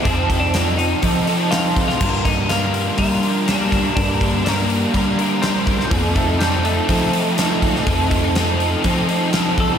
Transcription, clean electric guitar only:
\new Staff \with { instrumentName = "Clean electric guitar" } { \time 4/4 \key f \mixolydian \tempo 4 = 123 c'8. d'8. ees'4 r8 f'8. f'16~ | f'8 ees'8 f'4 f'4 d'4 | d'4 bes2 c'8. c'16 | bes8 a8 g8 a2~ a8~ |
a2. r8 a'8 | }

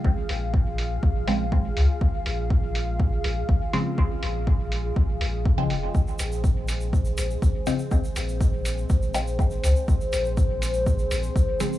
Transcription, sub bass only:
\new Staff \with { instrumentName = "Sub bass" } { \clef bass \time 4/4 \key bes \minor \tempo 4 = 122 bes,,8 bes,,4. bes,,4. des,8 | bes,,8 bes,,2 bes,,8 bes,,8 r8 | bes,,8 bes,,4. bes,,8 bes,,4 f,,8 | bes,,8 bes,,2 bes,,8 bes,,8 r8 |
bes,,8 bes,,4. bes,,4. des,8 | bes,,8 bes,,2 bes,,8 bes,,8 r8 | }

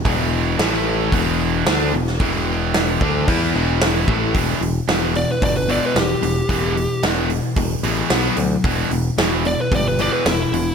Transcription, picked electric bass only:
\new Staff \with { instrumentName = "Picked electric bass" } { \clef bass \time 4/4 \key e \minor \tempo 4 = 112 e,,4 a,,4 e,,4 d,8 e,,8 | e,,4. d,8 e,8 e,,4 a,,8 | e,,8 e,,8 e,,4 g,,4 e,,8 e,,8 | e,,4 e,,4 e,,8 a,,8 b,,8 d,8 |
e,,8 e,,8 e,,4 g,,4 e,,8 e,,8 | }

